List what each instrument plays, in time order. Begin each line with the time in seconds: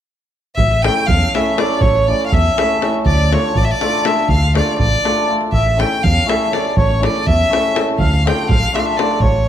0.55 fingered electric bass A1, violin E5, accordion E5, davul low
0.71 davul high
0.82 hammered dulcimer A3 C#4 E4 A4, violin G5, accordion G5, davul high
0.97 davul high
1.06 fingered electric bass E2, violin F5, accordion F5, davul low
1.34 hammered dulcimer A3 C#4 E4 A4, violin E5, accordion E5, davul high
1.56 hammered dulcimer A3 C#4 E4 A4, accordion D5, violin D5, davul high
1.70 davul high
1.80 fingered electric bass A1, accordion C#5, violin C#5, davul low
1.95 davul high
2.07 hammered dulcimer A3 C#4 E4 A4, violin D5, accordion D5
2.21 accordion F5, davul high
2.26 violin F5
2.32 fingered electric bass E2, accordion E5, violin E5, davul low
2.56 hammered dulcimer A3 C#4 E4 A4, davul high
2.81 hammered dulcimer A3 C#4 E4 A4, davul high
2.94 davul high
3.06 fingered electric bass D2, accordion D5, violin D5, davul low
3.31 hammered dulcimer A3 D4 F4 A4, accordion C#5, violin C#5, davul high
3.44 davul high
3.55 fingered electric bass A1, accordion D5, violin D5, davul low
3.62 accordion E5, violin E5
3.71 violin D5, accordion D5
3.81 hammered dulcimer A3 D4 F4 A4, davul high
4.04 hammered dulcimer A3 D4 F4 A4, accordion E5, violin E5, davul high
4.17 davul high
4.29 fingered electric bass D2, accordion F5, violin F5, davul low
4.42 davul high
4.54 hammered dulcimer A3 D4 F4 A4, accordion D5, violin D5, davul high
4.68 davul high
4.79 fingered electric bass A1, violin D5, accordion D5, davul low
4.93 davul high
5.04 hammered dulcimer A3 D4 F4 A4, davul high
5.18 davul high
5.27 hammered dulcimer A3 D4 F4 A4
5.41 davul high
5.52 fingered electric bass A1, violin E5, accordion E5, davul low
5.66 davul high
5.76 hammered dulcimer A3 C#4 E4 A4, violin G5, davul high
5.81 accordion G5
5.92 davul high
6.03 fingered electric bass E2, violin F5, accordion F5, davul low
6.26 hammered dulcimer A3 C#4 E4 A4, violin E5, accordion E5, davul high
6.51 hammered dulcimer A3 C#4 E4 A4, accordion D5, violin D5, davul high
6.65 davul high
6.77 fingered electric bass A1, accordion C#5, violin C#5, davul low
6.90 davul high
7.00 hammered dulcimer A3 C#4 E4 A4, accordion D5, davul high
7.06 violin D5
7.16 davul high
7.26 fingered electric bass E2, violin E5, accordion E5, davul low
7.50 hammered dulcimer A3 C#4 E4 A4, davul high
7.74 hammered dulcimer A3 C#4 E4 A4, davul high
7.89 davul high
7.99 fingered electric bass D2, violin F5, accordion F5, davul low
8.14 davul high
8.24 hammered dulcimer A3 D4 F4 A4, accordion G5, violin G5, davul high
8.39 davul high
8.49 fingered electric bass A1, violin F5, accordion F5, davul low
8.73 hammered dulcimer A3 D4 F4 A4, violin E5, accordion E5, davul high
8.79 violin F5, accordion F5
8.86 violin E5, accordion E5
8.97 hammered dulcimer A3 D4 F4 A4, violin D5, accordion D5, davul high
9.11 davul high
9.20 fingered electric bass A1, violin C#5, accordion C#5, davul low
9.36 davul high